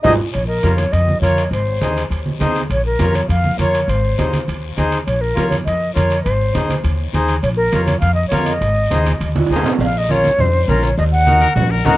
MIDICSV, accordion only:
0, 0, Header, 1, 2, 480
1, 0, Start_track
1, 0, Key_signature, -5, "minor"
1, 0, Tempo, 295130
1, 556, Time_signature, 4, 2, 24, 8
1, 19475, End_track
2, 0, Start_track
2, 0, Title_t, "Accordion"
2, 0, Program_c, 0, 21
2, 60, Note_on_c, 0, 68, 98
2, 61, Note_on_c, 0, 63, 105
2, 71, Note_on_c, 0, 72, 101
2, 220, Note_off_c, 0, 68, 0
2, 221, Note_off_c, 0, 63, 0
2, 227, Note_off_c, 0, 72, 0
2, 1023, Note_on_c, 0, 70, 54
2, 1028, Note_on_c, 0, 65, 56
2, 1038, Note_on_c, 0, 73, 69
2, 1366, Note_off_c, 0, 70, 0
2, 1368, Note_off_c, 0, 65, 0
2, 1373, Note_off_c, 0, 73, 0
2, 1983, Note_on_c, 0, 65, 68
2, 1992, Note_on_c, 0, 70, 58
2, 2007, Note_on_c, 0, 73, 74
2, 2326, Note_off_c, 0, 65, 0
2, 2331, Note_off_c, 0, 70, 0
2, 2338, Note_off_c, 0, 73, 0
2, 2955, Note_on_c, 0, 63, 62
2, 2958, Note_on_c, 0, 68, 55
2, 2968, Note_on_c, 0, 72, 71
2, 3293, Note_off_c, 0, 63, 0
2, 3295, Note_off_c, 0, 68, 0
2, 3299, Note_off_c, 0, 72, 0
2, 3902, Note_on_c, 0, 63, 85
2, 3903, Note_on_c, 0, 68, 74
2, 3914, Note_on_c, 0, 72, 90
2, 4248, Note_off_c, 0, 63, 0
2, 4248, Note_off_c, 0, 68, 0
2, 4253, Note_off_c, 0, 72, 0
2, 4879, Note_on_c, 0, 65, 64
2, 4888, Note_on_c, 0, 73, 69
2, 4889, Note_on_c, 0, 70, 61
2, 5217, Note_off_c, 0, 65, 0
2, 5222, Note_off_c, 0, 70, 0
2, 5222, Note_off_c, 0, 73, 0
2, 5833, Note_on_c, 0, 65, 70
2, 5841, Note_on_c, 0, 70, 59
2, 5850, Note_on_c, 0, 73, 73
2, 6175, Note_off_c, 0, 65, 0
2, 6179, Note_off_c, 0, 70, 0
2, 6183, Note_off_c, 0, 73, 0
2, 6796, Note_on_c, 0, 63, 60
2, 6808, Note_on_c, 0, 68, 55
2, 6813, Note_on_c, 0, 72, 71
2, 7137, Note_off_c, 0, 63, 0
2, 7143, Note_off_c, 0, 68, 0
2, 7146, Note_off_c, 0, 72, 0
2, 7765, Note_on_c, 0, 63, 87
2, 7767, Note_on_c, 0, 68, 71
2, 7773, Note_on_c, 0, 72, 94
2, 8103, Note_off_c, 0, 63, 0
2, 8104, Note_off_c, 0, 68, 0
2, 8107, Note_off_c, 0, 72, 0
2, 8699, Note_on_c, 0, 65, 63
2, 8718, Note_on_c, 0, 70, 58
2, 8718, Note_on_c, 0, 73, 72
2, 9050, Note_off_c, 0, 65, 0
2, 9060, Note_off_c, 0, 70, 0
2, 9060, Note_off_c, 0, 73, 0
2, 9665, Note_on_c, 0, 65, 66
2, 9675, Note_on_c, 0, 73, 72
2, 9679, Note_on_c, 0, 70, 61
2, 10014, Note_off_c, 0, 65, 0
2, 10019, Note_off_c, 0, 73, 0
2, 10021, Note_off_c, 0, 70, 0
2, 10638, Note_on_c, 0, 63, 62
2, 10643, Note_on_c, 0, 68, 59
2, 10644, Note_on_c, 0, 72, 76
2, 10980, Note_off_c, 0, 63, 0
2, 10983, Note_off_c, 0, 68, 0
2, 10984, Note_off_c, 0, 72, 0
2, 11612, Note_on_c, 0, 63, 77
2, 11616, Note_on_c, 0, 68, 82
2, 11620, Note_on_c, 0, 72, 97
2, 11948, Note_off_c, 0, 63, 0
2, 11950, Note_off_c, 0, 68, 0
2, 11952, Note_off_c, 0, 72, 0
2, 12565, Note_on_c, 0, 65, 65
2, 12573, Note_on_c, 0, 73, 73
2, 12578, Note_on_c, 0, 70, 61
2, 12905, Note_off_c, 0, 65, 0
2, 12909, Note_off_c, 0, 73, 0
2, 12912, Note_off_c, 0, 70, 0
2, 13514, Note_on_c, 0, 65, 70
2, 13529, Note_on_c, 0, 70, 66
2, 13530, Note_on_c, 0, 73, 83
2, 13859, Note_off_c, 0, 65, 0
2, 13867, Note_off_c, 0, 70, 0
2, 13868, Note_off_c, 0, 73, 0
2, 14485, Note_on_c, 0, 63, 74
2, 14492, Note_on_c, 0, 68, 67
2, 14493, Note_on_c, 0, 72, 84
2, 14824, Note_off_c, 0, 63, 0
2, 14828, Note_off_c, 0, 68, 0
2, 14828, Note_off_c, 0, 72, 0
2, 15471, Note_on_c, 0, 63, 79
2, 15472, Note_on_c, 0, 68, 75
2, 15476, Note_on_c, 0, 72, 87
2, 15797, Note_off_c, 0, 63, 0
2, 15797, Note_off_c, 0, 68, 0
2, 15799, Note_off_c, 0, 72, 0
2, 16416, Note_on_c, 0, 61, 74
2, 16426, Note_on_c, 0, 65, 62
2, 16428, Note_on_c, 0, 70, 78
2, 16748, Note_off_c, 0, 61, 0
2, 16753, Note_off_c, 0, 65, 0
2, 16754, Note_off_c, 0, 70, 0
2, 17370, Note_on_c, 0, 61, 75
2, 17374, Note_on_c, 0, 65, 68
2, 17384, Note_on_c, 0, 70, 83
2, 17704, Note_off_c, 0, 61, 0
2, 17705, Note_off_c, 0, 65, 0
2, 17710, Note_off_c, 0, 70, 0
2, 18313, Note_on_c, 0, 63, 70
2, 18318, Note_on_c, 0, 66, 60
2, 18334, Note_on_c, 0, 70, 82
2, 18653, Note_off_c, 0, 63, 0
2, 18655, Note_off_c, 0, 66, 0
2, 18663, Note_off_c, 0, 70, 0
2, 19274, Note_on_c, 0, 63, 96
2, 19279, Note_on_c, 0, 66, 89
2, 19279, Note_on_c, 0, 70, 102
2, 19475, Note_off_c, 0, 63, 0
2, 19475, Note_off_c, 0, 66, 0
2, 19475, Note_off_c, 0, 70, 0
2, 19475, End_track
0, 0, End_of_file